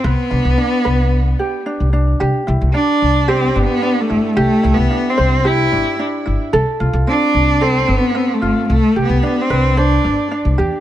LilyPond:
<<
  \new Staff \with { instrumentName = "Ukulele" } { \time 4/4 \key c \major \tempo 4 = 111 b'8 d'8 d'8 b'4 g'8 d'8 d'8 | g'8 e'8 d'4 g'8 d'8 d'8 e'8 | g'8 e'8 d'8 c''8 g'8 d'8 d'8 e'8 | a'8 f'8 c'4 a'8 c'8 c'8 f'8 |
r8 g'8 d'8 b'8 c''8 d'8 d'8 g'8 | }
  \new Staff \with { instrumentName = "Cello" } { \time 4/4 \key c \major b2. r4 | r4 d'4 \tuplet 3/2 { c'4 b8~ b8 a4 } | \tuplet 3/2 { a4 b8~ b8 c'4 } e'4 r4 | r4 d'4 \tuplet 3/2 { c'4 b8~ b8 a4 } |
\tuplet 3/2 { a4 b8~ b8 c'4 } d'4 r4 | }
  \new Staff \with { instrumentName = "Upright bass" } { \clef bass \time 4/4 \key c \major c,16 r16 c,16 c,16 r8 c,8. r4 c,8 r16 | c,16 r16 c,16 c,16 r8 c,8. r16 g,,16 r8. g,,16 r16 | c,16 r16 c,16 c,16 r8 c,8. r16 g,,16 r8. g,,16 r16 | c,16 r16 c,16 c,16 r8 c,8. r16 g,,16 r8. g,,16 r16 |
c,16 r16 c,16 c,16 r8 c,8. r16 g,,16 r8 c,16 e,16 r16 | }
>>